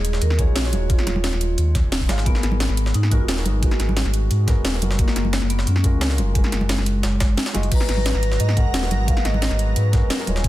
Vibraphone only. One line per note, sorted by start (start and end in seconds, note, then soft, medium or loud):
0.00 0.23 G#4 loud
0.22 0.30 A#4 loud
0.39 0.46 G#4 loud
0.56 0.88 F#4 loud
0.90 1.54 F4 medium
2.27 2.91 B3 loud
2.95 3.12 D#4 loud
3.12 3.21 F#4 loud
3.20 3.29 F4 loud
3.29 3.64 D#4 loud
3.63 4.78 F#4 loud
4.99 5.47 A#3 loud
5.50 5.68 B3 loud
5.67 6.15 C#4 loud
6.35 7.34 G#3 medium
7.72 8.42 B4 loud
8.40 8.57 D#5 loud
8.57 9.09 F#5 loud
9.08 9.24 F5 loud
9.25 9.57 D#5 loud
9.76 10.08 B4 medium